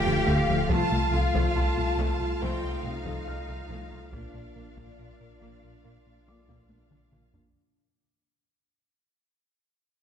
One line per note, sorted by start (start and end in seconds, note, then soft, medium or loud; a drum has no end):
0.00 0.71 D1 medium
0.00 0.66 A3 medium
0.00 0.66 F4 medium
0.00 0.68 F4 medium
0.00 0.69 G4 loud
0.00 0.66 F5 medium
0.00 0.27 G5 medium
0.05 0.13 D2 medium
0.05 0.19 D2 medium
0.05 0.19 F3 medium
0.05 0.13 A3 medium
0.05 taiko low soft
0.26 0.34 D2 medium
0.26 0.40 D2 medium
0.26 0.40 D3 medium
0.26 0.47 A3 medium
0.26 0.70 F5 medium
0.48 0.56 D2 medium
0.48 0.62 D2 medium
0.48 0.62 F3 medium
0.48 0.57 A3 medium
0.69 0.77 C2 medium
0.69 4.15 C2 medium
0.69 0.83 C2 medium
0.69 0.83 F3 medium
0.69 0.90 A3 medium
0.69 4.10 A3 medium
0.69 2.41 F4 medium
0.69 4.08 F4 medium
0.69 4.09 F4 medium
0.69 4.09 F5 medium
0.69 1.12 A5 medium
0.69 taiko medium
0.90 0.98 C2 medium
0.90 1.05 C2 medium
0.90 1.00 A3 soft
0.90 1.05 A3 medium
1.12 1.20 C2 medium
1.12 1.26 C2 medium
1.12 1.21 A3 medium
1.12 1.26 F4 medium
1.12 1.56 F5 medium
1.33 1.41 C2 medium
1.33 1.48 C2 medium
1.33 1.47 F3 medium
1.33 1.54 A3 medium
1.33 taiko medium
1.55 1.63 C2 medium
1.55 1.70 C2 medium
1.55 1.64 A3 soft
1.55 1.69 F4 medium
1.55 2.42 A5 medium
1.76 1.84 C2 medium
1.76 1.91 C2 medium
1.76 1.84 A3 medium
1.76 1.91 F4 medium
1.97 2.05 C2 medium
1.97 2.12 C2 medium
1.97 2.12 F3 medium
1.97 2.18 A3 medium
2.19 2.27 C2 soft
2.19 2.34 C2 medium
2.19 2.28 A3 soft
2.19 2.33 F4 medium
2.40 2.48 C2 medium
2.40 2.55 C2 medium
2.40 2.55 F3 medium
2.40 2.61 A3 medium
2.40 4.12 D#4 medium
2.40 4.95 C5 soft
2.40 2.84 G5 medium
2.40 4.95 C6 soft
2.64 2.77 C2 medium
2.83 2.91 C2 soft
2.83 2.98 C3 medium
2.83 2.92 A3 soft
2.83 2.97 C4 medium
2.83 4.12 F5 medium
3.05 3.13 C2 medium
3.05 3.19 C2 medium
3.05 3.18 F3 medium
3.05 3.25 A3 medium
3.05 taiko medium
3.26 3.34 C2 soft
3.26 3.41 C2 medium
3.26 3.35 A3 soft
3.26 3.40 A3 soft
3.26 5.80 F6 soft
3.48 3.56 C2 soft
3.48 3.62 C2 medium
3.48 3.56 A3 soft
3.48 3.61 A3 medium
3.69 3.77 C2 medium
3.69 3.84 C2 medium
3.69 3.83 F3 medium
3.69 3.90 A3 medium
3.91 3.99 C2 soft
3.91 4.05 C2 medium
3.91 4.00 A3 soft
3.91 4.05 A3 soft
4.12 4.20 A#1 medium
4.12 7.56 A#1 medium
4.12 4.26 A#2 medium
4.12 7.23 A#3 soft
4.12 4.33 A#3 medium
4.12 4.26 A#3 medium
4.12 7.08 D4 medium
4.12 7.19 F4 medium
4.12 7.32 F4 soft
4.12 7.08 D5 medium
4.12 7.32 F5 medium
4.12 taiko medium
4.34 4.42 A#1 soft
4.34 4.47 A#2 medium
4.34 4.43 A#3 soft
4.34 4.47 D4 medium
4.56 4.64 A#1 soft
4.56 4.68 A#2 medium
4.56 4.64 A#3 soft
4.56 4.68 A#4 medium
4.77 4.85 A#1 medium
4.77 4.90 A#2 medium
4.77 4.90 A#3 medium
4.77 4.97 A#3 medium
4.77 taiko medium
4.98 5.07 A#1 soft
4.98 5.12 A#2 soft
4.98 5.06 A#3 soft
4.98 5.12 A#4 medium
5.20 5.28 A#1 soft
5.20 5.33 A#2 medium
5.20 5.28 A#3 soft
5.20 5.33 A#4 soft
5.41 5.49 A#1 medium
5.41 5.55 A#2 medium
5.41 5.61 A#3 medium
5.41 5.54 A#3 medium
5.62 5.71 A#1 soft
5.62 5.76 A#2 medium
5.62 5.70 A#3 soft
5.62 5.76 A#4 medium
5.84 5.93 A#1 medium
5.84 5.97 A#2 medium
5.84 6.04 A#3 soft
5.84 5.97 A#3 medium
6.06 6.19 A#2 soft
6.27 6.36 A#1 soft
6.27 6.35 A#3 soft
6.27 6.40 A#3 soft
6.27 6.40 F4 soft
6.27 7.52 D5 soft
6.27 7.52 D6 soft
6.48 6.57 A#1 medium
6.48 6.61 A#2 medium
6.48 6.68 A#3 medium
6.48 6.61 A#3 medium
6.48 taiko medium
6.69 6.78 A#1 soft
6.69 6.84 A#2 soft
6.69 6.77 A#3 soft
6.69 6.83 D4 soft
6.69 taiko high medium
6.91 6.99 A#1 soft
6.91 7.04 A#2 medium
6.91 6.99 A#3 soft
6.91 7.04 D4 medium
6.91 taiko mid medium
7.12 7.21 A#1 soft
7.12 7.26 A#2 medium
7.12 7.32 A#3 soft
7.12 7.26 A#3 medium
7.12 taiko mid medium
7.34 7.43 A#1 soft
7.34 7.48 A#2 medium
7.34 7.43 A#3 soft
7.34 7.47 D4 medium
7.34 taiko low medium